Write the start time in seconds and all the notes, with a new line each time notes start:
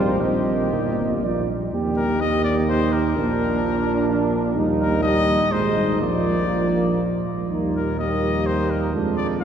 Already playing: G#1 G3 C4 F4 C5
0.20 A#1 G3 C4 G4 D#5
0.71 G1 A#3
1.22 A#1 F3 D5
1.73 D#2 A#3 G4
1.97 A#4
2.21 A#3 G4 D#5
2.44 D5
2.69 D#4 C5
2.93 A#4
3.17 A#1 A#3 D4
3.63 F4
4.10 D4
4.56 D#2 G3 D#4
4.79 A#4
5.03 G3 D#4 G4 D#5
5.52 G#1 G#3 D#4 G#4 C5
5.76 G3
6.01 A#1 F3 A#3 F4 D5
7.51 D#2 G3 A#3 D#4
7.76 A#4
7.99 G3 A#3 G4 D#5
8.46 C5
8.70 A#4
8.94 F2 G#3 D4 F4
9.17 D5
9.41 G#3 F5